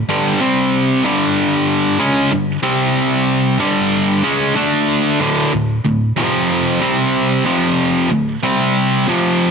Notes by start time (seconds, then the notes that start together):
0.09 G2 D3 G3
0.40 C3 G3 C4
1.04 G2 D3 G3
1.99 C#3 G#3 C#4
2.31 G2 D3
2.62 C3 G3 C4
3.59 G2 D3 G3
4.23 C#3 G#3 C#4
4.56 D3 A3 D4
5.20 D2 A2 D3
5.53 D2 A2
5.85 D2 A2
6.17 F2 C3 F3
6.81 C3 G3 C4
7.45 F2 C3 F3
8.10 D2 A2
8.43 C3 G3 C4
9.07 F2 C3 F3